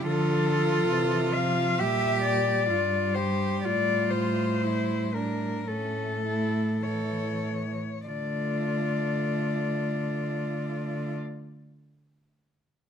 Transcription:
cello
0.07 D3 F3 F4 A4
0.91 C3 E3
1.33 F3 F5
1.78 A#2 G3 G4 E5
2.23 D5
2.69 G2 F4
3.14 G4 C5
3.63 A2 F4 D5
4.10 C5
4.64 E4
5.14 D4 A#4
5.68 A2 A3 C#4 A4
6.25 E4
6.82 E3 A4 C#5
8.06 D3 A3 F4 D5

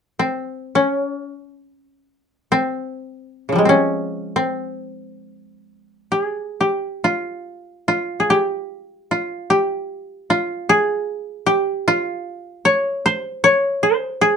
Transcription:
koto
0.19 C4
0.75 C#4
2.52 C4
3.49 C#3 F3
3.56 G3 G#3
3.65 C4 C#4
4.36 C4
6.12 G4
6.23 G#4
6.61 G4
7.04 F4
7.88 F4
8.20 G#4
8.30 G4
9.11 F4
9.50 G4
10.30 F4
10.69 G#4
11.46 G4
11.88 F4
12.65 C#5
13.06 C5
13.44 C#5
13.83 C5
14.21 G#4

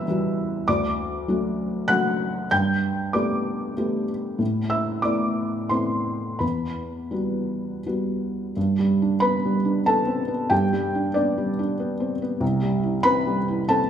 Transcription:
felt piano
Already playing: E2 E3 G3 F#4 B4 E5 B5 E6
0.08 E3 G3 F#4
0.68 D2 D5 D6
1.28 F#3 A3 F#4
1.88 F#3 A3 F#4 F#5 F#6
2.51 G2 G5 G6
3.13 A3 B3 G4 D5 D6
3.77 A3 B3 G4
4.39 A2
4.70 E5 E6
5.02 A3 B3 E4 D5 D6
5.69 A3 B3 C4 E4 C6
6.39 E2 B4 B5
7.11 G3 B3 F#4
7.86 G3 B3 F#4
8.57 G2
8.79 G3
9.02 D4
9.20 B3 B4 B5
9.45 G3
9.65 D4
9.86 B3 A4 A5
10.07 C4
10.28 B3
10.50 G2 G4 G5
10.73 G3
10.95 D4
11.14 B3 D4 D5
11.38 G3
11.59 D4
11.80 B3
12.00 C4
12.22 B3
12.40 C2
12.62 G3
12.83 E4
13.03 C4 B4 B5
13.27 G3
13.48 E4
13.68 C4 A4 A5

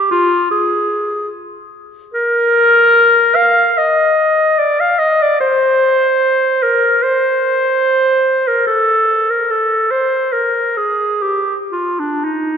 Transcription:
clarinet
0.11 F4
0.51 G#4
2.14 A#4
3.35 F5
3.78 D#5
4.59 D5
4.80 F5
4.99 D#5
5.22 D5
5.41 C5
6.63 A#4
7.03 C5
8.48 A#4
8.67 A4
9.30 A#4
9.51 A4
9.91 C5
10.33 A#4
10.77 G#4
11.22 G4
11.72 F4
12.00 D4
12.24 D#4

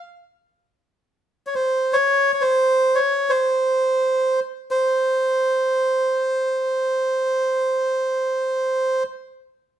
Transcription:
melodica
1.47 C#5
1.55 C5
1.93 C#5
2.33 C#5
2.41 C5
2.95 C#5
3.30 C5
4.71 C5

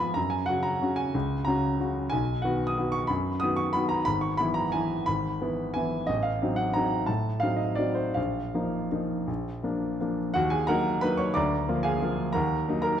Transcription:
grand piano
Already playing: G#2 F3 B3 F4 G#5 A#5
0.00 B5
0.14 F#2 A#5
0.30 G#5
0.46 C#3 C#4 F#4 F#5
0.63 A#5
0.81 C#3 C#4 F#4
0.96 G#5
1.14 C#2
1.45 C#3 C#4 F#4 A#5
1.80 C#3 C#4 F#4
2.10 B1 G#5
2.42 D#3 B3 F#4 F#5
2.67 D#6
2.77 D#3 B3 F#4
2.92 C#6
3.07 F#2 B5
3.40 D#3 B3 F#4 D#6
3.56 C#6
3.73 D#3 B3 F#4 B5
3.89 A#5
4.05 G#1 B5
4.21 C#6
4.37 E3 B3 E4 B5
4.54 A#5
4.72 E3 B3 E4 G#5
5.06 G#1 B5
5.41 E3 B3 E4
5.74 E3 B3 E4 G#5
6.07 A1 D#5
6.23 F5
6.42 F#3 C4 D#4
6.56 F#5
6.73 F#3 C4 D#4 A#5
7.06 A2 A5
7.40 F#3 C4 D#4 F5
7.56 D#5
7.75 F#3 C4 D#4 D5
7.95 C5
8.14 A#1 F5
8.54 F3 A#3 D#4
8.92 F3 A#3 D#4
9.27 A#1
9.63 F3 A#3 D4
10.01 F3 A#3 D4
10.34 D#2 F#4 F#5
10.50 G#4 G#5
10.67 F#3 A#3 D#4 A#4 F#5 A#5
11.01 F#3 A#3 D#4 B4 B5
11.17 C#5 C#6
11.34 D2 D5 A#5 D6
11.69 F3 A#3 F4
11.83 G#4 F5 G#5
12.02 F3 A#3 F4
12.33 D#2 A#4 F#5 A#5
12.68 F#3 A#3 D#4
12.82 A#4 A#5

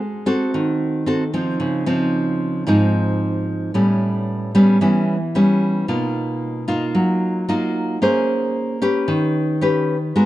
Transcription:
nylon-string guitar
Already playing: G#3
0.26 C4 F#4 A4
0.54 D#3
1.06 C4 F#4 A4
1.34 F3 C4 D#4
1.60 C#3
1.86 F3 C4 D#4
2.67 G#2 F3 C4 D#4
3.74 A2 G3 B3 C#4
4.55 G3 B3 C#4
4.81 E3 G3 B3 C#4
5.35 G3 B3 C#4
5.88 B2 A#3 D#4 F4
6.68 A#3 D#4 F4
6.95 F#3
7.49 A#3 D#4 F4
8.02 A#3 C#4 G#4 C5
8.82 C#4 G4 B4
9.08 D#3
9.61 C#4 G4 B4
10.16 G#3 B3 F#4 A#4

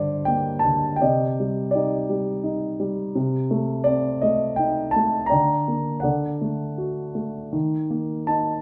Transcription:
grand piano
Already playing: G2 D3 G3 C5 D5
0.25 A#3 G5
0.59 A5
0.64 D3
0.96 G5
1.01 C3 D5 D#5
1.40 G3
1.71 D5
1.75 D#4 G4
2.10 G3
2.44 D#4
2.80 G3
3.15 C3
3.51 A3
3.84 C4 D5
4.21 A3 D#5
4.56 D#4 G5
4.91 A5
4.96 A3
5.26 D5 G5 A#5
5.32 D3
5.68 A#3
6.00 A4 D5 F#5
6.04 D3
6.41 A3
6.78 F#4
7.15 A3
7.53 D#3
7.90 A#3
8.27 D#4 A5

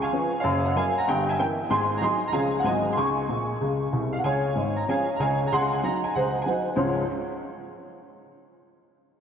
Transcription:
upright piano
Already playing: C#2 C#3 G#5 C#6
0.02 F5 G#5
0.13 F3 C#4 B4
0.40 F#2 C#5 F5
0.44 F#1
0.65 D#5 F#5
0.75 F#3 C#4 A#4 F5 G#5
0.98 F#5 A#5
1.07 G1 G2 D#5 G5
1.29 E5 G#5
1.39 E3 C#4 A#4 E5 G5
1.70 G#1 G#2 G#5 C6
1.97 F#3 A#5
2.02 D#4 G#4 G#5 C6
2.28 A#5
2.32 C#2 C#3 F3 C#4 G#4 F5 G#5
2.59 F#5
2.64 G#1 G#2 F#3 C4 G#4 D#5 G#5
2.93 C#2 C#3 C6
2.97 G#5 C#6
3.28 A#1 A#2
3.60 C#2 C#3
3.92 C2 C3
4.13 F5
4.19 F#5
4.23 C#2 C#3 C#5 F5 G#5
4.55 G#1 G#2
4.76 A#5
4.88 F3 C#4 G#4 C#5 F5 G#5
5.16 C#2 C#3 A#5
5.20 C#5 F5 G#5
5.47 A#5
5.52 C#2 C#3 F#5 G#5 C6
5.73 G#5
5.83 F#3 D#4 G#4 A#5
6.04 G#5
6.14 C#2 C#3 C5 D#5 F#5
6.42 F#3 G#5
6.46 D#4 G#4 C5 D#5 F#5
6.76 C#2 G#2 F3 G#3 C#4 F4 C#5

